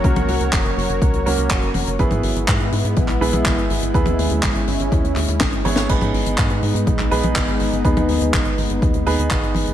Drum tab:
CC |----------------|----------------|----------------|x---------------|
HH |xxoxxxoxxxoxxxox|xxoxxxoxxxoxxxox|xxox-xoxxxoxxxox|xxoxxxoxxxoxxxox|
CP |----x-------x---|----x----x--x---|----x-----x-x---|----x----x--x---|
SD |----------------|----------------|------------o--o|----------------|
T1 |-o------------o-|-o---------o----|-o------------o-|-o---------o----|
BD |o---o---o---o---|o---o---o---o---|o---o---o---o---|o---o---o---o---|

CC |----------------|
HH |xxoxxxoxxxoxxxox|
CP |----x-------x---|
SD |----------------|
T1 |-o------------o-|
BD |o---o---o---o---|